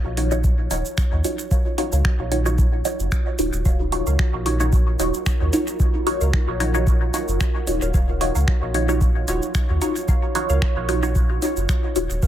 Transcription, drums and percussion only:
0.17 open hi-hat
0.32 cabasa
0.44 kick, cabasa
0.71 open hi-hat, cabasa
0.85 cabasa
0.98 finger snap, kick, cabasa
1.24 open hi-hat, cabasa
1.39 cabasa
1.51 kick, cabasa
1.78 open hi-hat
1.92 cabasa
2.05 finger snap, kick
2.32 open hi-hat
2.46 cabasa
2.58 kick, cabasa
2.85 open hi-hat, cabasa
3.00 cabasa
3.12 finger snap, kick, cabasa
3.39 open hi-hat, cabasa
3.53 cabasa
3.65 kick, cabasa
3.92 open hi-hat
4.07 cabasa
4.19 finger snap, kick
4.46 open hi-hat
4.60 cabasa
4.73 kick, cabasa
5.00 open hi-hat, cabasa
5.14 cabasa
5.26 finger snap, kick, cabasa
5.53 open hi-hat, cabasa
5.67 cabasa
5.80 kick, cabasa
6.07 open hi-hat
6.21 cabasa
6.33 finger snap, kick
6.60 open hi-hat
6.75 cabasa
6.87 kick, cabasa
7.14 open hi-hat, cabasa
7.28 cabasa
7.41 finger snap, kick, cabasa
7.67 open hi-hat, cabasa
7.82 cabasa
7.94 kick, cabasa
8.21 open hi-hat
8.35 cabasa
8.48 finger snap, kick
8.74 open hi-hat
8.89 cabasa
9.01 kick, cabasa
9.28 open hi-hat, cabasa
9.42 cabasa
9.55 finger snap, kick, cabasa
9.82 open hi-hat, cabasa
9.96 cabasa
10.08 kick, cabasa
10.35 open hi-hat
10.49 cabasa
10.62 finger snap, kick
10.89 open hi-hat
11.03 cabasa
11.15 kick, cabasa
11.42 open hi-hat, cabasa
11.57 cabasa
11.69 finger snap, kick, cabasa
11.96 open hi-hat, cabasa
12.10 cabasa
12.23 kick, cabasa

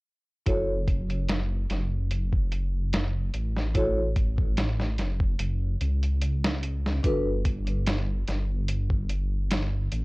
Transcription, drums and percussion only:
0.46 kick, closed hi-hat
0.88 kick, closed hi-hat
1.10 closed hi-hat
1.29 snare, closed hi-hat
1.70 snare, closed hi-hat
2.11 closed hi-hat
2.33 kick
2.52 closed hi-hat
2.93 snare, closed hi-hat
3.34 closed hi-hat
3.57 snare
3.75 kick, closed hi-hat
4.16 kick, closed hi-hat
4.38 kick
4.57 snare, closed hi-hat
4.80 snare
4.98 snare, closed hi-hat
5.20 kick
5.39 closed hi-hat
5.81 closed hi-hat
6.03 closed hi-hat
6.22 closed hi-hat
6.44 snare
6.63 closed hi-hat
6.86 snare
7.04 kick, closed hi-hat
7.45 kick, closed hi-hat
7.67 closed hi-hat
7.86 snare, closed hi-hat
8.28 snare, closed hi-hat
8.68 closed hi-hat
8.90 kick
9.09 closed hi-hat
9.51 snare, closed hi-hat
9.92 closed hi-hat

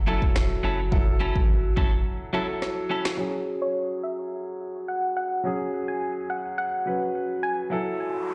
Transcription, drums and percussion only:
0.22 kick
0.36 finger snap, cross-stick, snare
0.92 kick
1.36 kick
1.77 kick
2.62 cross-stick, snare
3.05 finger snap, snare

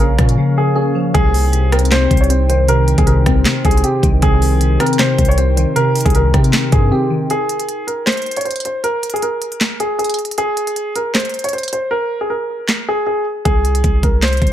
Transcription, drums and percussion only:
0.19 kick, cross-stick, closed hi-hat
0.29 closed hi-hat
1.15 kick, closed hi-hat
1.34 open hi-hat
1.53 closed hi-hat
1.72 cross-stick, closed hi-hat
1.79 closed hi-hat
1.85 closed hi-hat
1.92 snare, clap, closed hi-hat
2.11 kick, closed hi-hat
2.17 closed hi-hat
2.24 closed hi-hat
2.30 closed hi-hat
2.50 closed hi-hat
2.68 closed hi-hat
2.88 closed hi-hat
2.98 kick, closed hi-hat
3.07 closed hi-hat
3.26 kick, cross-stick, closed hi-hat
3.45 snare, clap, closed hi-hat
3.65 kick, closed hi-hat
3.71 closed hi-hat
3.77 closed hi-hat
3.84 closed hi-hat
4.03 kick, closed hi-hat
4.22 kick, closed hi-hat
4.42 open hi-hat
4.61 closed hi-hat
4.80 cross-stick, closed hi-hat
4.86 closed hi-hat
4.93 closed hi-hat
4.99 snare, clap, closed hi-hat
5.18 kick, closed hi-hat
5.25 closed hi-hat
5.31 closed hi-hat
5.38 closed hi-hat
5.57 closed hi-hat
5.76 closed hi-hat
5.95 closed hi-hat, open hi-hat
6.01 closed hi-hat
6.06 kick, closed hi-hat
6.10 closed hi-hat
6.15 closed hi-hat
6.34 kick, cross-stick, closed hi-hat
6.44 closed hi-hat
6.53 snare, clap, closed hi-hat
6.72 kick, closed hi-hat
7.30 closed hi-hat
7.49 closed hi-hat
7.60 closed hi-hat
7.69 closed hi-hat
7.88 closed hi-hat
8.07 snare, clap, closed hi-hat
8.12 closed hi-hat
8.17 closed hi-hat
8.22 closed hi-hat
8.26 closed hi-hat
8.31 closed hi-hat
8.36 closed hi-hat
8.41 closed hi-hat
8.46 closed hi-hat
8.51 closed hi-hat
8.56 closed hi-hat
8.60 closed hi-hat
8.65 closed hi-hat
8.84 closed hi-hat
9.03 closed hi-hat
9.10 closed hi-hat
9.16 closed hi-hat
9.22 closed hi-hat
9.42 closed hi-hat
9.52 closed hi-hat
9.61 snare, clap, closed hi-hat
9.80 closed hi-hat
9.99 closed hi-hat
10.04 closed hi-hat
10.10 closed hi-hat
10.14 closed hi-hat
10.19 closed hi-hat
10.25 closed hi-hat
10.31 closed hi-hat
10.38 closed hi-hat
10.57 closed hi-hat
10.67 closed hi-hat
10.76 closed hi-hat
10.96 closed hi-hat
11.15 snare, clap, closed hi-hat
11.20 closed hi-hat
11.25 closed hi-hat
11.29 closed hi-hat
11.34 closed hi-hat
11.39 closed hi-hat
11.44 closed hi-hat
11.49 closed hi-hat
11.53 closed hi-hat
11.58 closed hi-hat
11.63 closed hi-hat
11.68 closed hi-hat
11.73 closed hi-hat
12.69 snare, clap
13.45 kick, closed hi-hat
13.65 closed hi-hat
13.75 closed hi-hat
13.84 kick, closed hi-hat
14.03 kick, closed hi-hat
14.22 snare, clap, closed hi-hat
14.27 closed hi-hat
14.33 closed hi-hat
14.37 closed hi-hat
14.42 kick, closed hi-hat
14.47 closed hi-hat

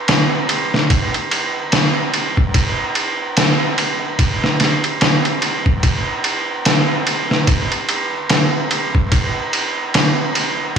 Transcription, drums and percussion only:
0.08 snare, ride
0.49 ride
0.74 snare
0.90 kick, ride
1.14 ride
1.31 ride
1.72 snare, ride
2.14 ride
2.37 kick
2.54 kick, ride
2.95 ride
3.37 snare, ride
3.78 ride
4.19 kick, ride
4.44 snare
4.60 snare, ride
4.84 ride
5.01 snare, ride
5.25 ride
5.42 ride
5.66 kick
5.83 kick, ride
6.24 ride
6.65 snare, ride
7.07 ride
7.31 snare
7.47 kick, ride
7.72 ride
7.89 ride
8.30 snare, ride
8.71 ride
8.95 kick
9.12 kick, ride
9.53 ride
9.94 snare, ride
10.35 ride

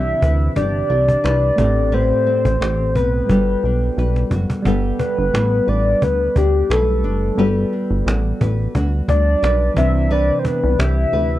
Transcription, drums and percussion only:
0.22 cajon bass
0.40 cajon slap
0.56 cajon bass
0.90 cajon slap
1.08 cajon bass, cajon slap
1.26 cajon slap
1.42 cajon slap
1.58 cajon bass
1.77 cajon slap
1.93 cajon slap
2.27 cajon slap
2.45 cajon bass
2.62 cajon slap
2.96 cajon bass
3.13 cajon slap
3.29 cajon bass
3.49 cajon slap
3.63 cajon slap
3.82 cajon slap
3.98 cajon slap
4.16 cajon slap
4.31 cajon bass
4.50 cajon bass
4.65 cajon bass
4.99 cajon bass
5.18 cajon slap
5.35 cajon slap
5.67 cajon slap
5.86 cajon slap
6.02 cajon bass
6.36 cajon bass
6.55 cajon slap
6.71 cajon slap
6.88 cajon slap
7.23 cajon slap
7.39 cajon slap
7.73 cajon slap
7.91 cajon slap
8.08 cajon slap
8.41 cajon bass
8.59 cajon slap
8.75 cajon bass
9.09 cajon bass
9.27 cajon slap
9.44 cajon slap
9.61 cajon slap
9.77 cajon bass
9.95 cajon slap
10.45 cajon bass
10.63 cajon slap
10.80 cajon slap
11.12 cajon slap
11.31 cajon slap

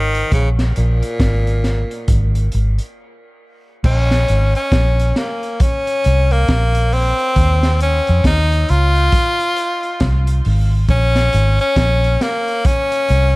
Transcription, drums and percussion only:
0.15 closed hi-hat
0.32 kick, closed hi-hat
0.59 snare, closed hi-hat
0.76 closed hi-hat
1.02 closed hi-hat
1.20 kick, snare, closed hi-hat
1.47 closed hi-hat
1.64 snare, closed hi-hat
1.91 closed hi-hat
2.08 kick, closed hi-hat
2.35 closed hi-hat
2.52 closed hi-hat
2.78 closed hi-hat
3.84 kick, crash
4.11 snare, closed hi-hat
4.28 closed hi-hat
4.55 closed hi-hat
4.72 kick, snare, closed hi-hat
5.00 closed hi-hat
5.16 snare, closed hi-hat
5.43 closed hi-hat
5.60 kick, closed hi-hat
5.87 closed hi-hat
6.04 closed hi-hat
6.31 closed hi-hat
6.48 kick, snare, closed hi-hat
6.75 closed hi-hat
6.92 open hi-hat
7.19 closed hi-hat
7.36 kick, closed hi-hat
7.63 snare, closed hi-hat
7.80 closed hi-hat
8.07 closed hi-hat
8.24 kick, snare, closed hi-hat
8.52 closed hi-hat
8.69 closed hi-hat
8.95 closed hi-hat
9.12 kick, closed hi-hat
9.40 closed hi-hat
9.56 closed hi-hat
9.83 closed hi-hat
10.00 kick, snare, closed hi-hat
10.27 closed hi-hat
10.45 open hi-hat
10.89 kick, closed hi-hat
11.16 snare, closed hi-hat
11.33 closed hi-hat
11.59 closed hi-hat
11.76 kick, snare, closed hi-hat
12.04 closed hi-hat
12.21 snare, closed hi-hat
12.48 closed hi-hat
12.65 kick, closed hi-hat
12.92 closed hi-hat
13.09 closed hi-hat

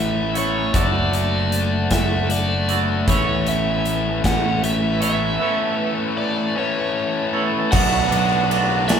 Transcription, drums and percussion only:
0.35 closed hi-hat
0.74 kick, closed hi-hat
1.13 closed hi-hat
1.52 closed hi-hat
1.91 kick, snare, closed hi-hat
2.30 closed hi-hat
2.69 closed hi-hat
3.08 kick, closed hi-hat
3.47 closed hi-hat
3.85 closed hi-hat
4.24 kick, snare, closed hi-hat
4.64 closed hi-hat
5.02 closed hi-hat
7.73 kick, clap, crash
8.12 clap, ride
8.30 clap
8.51 ride
8.70 clap
8.89 snare, clap, ride

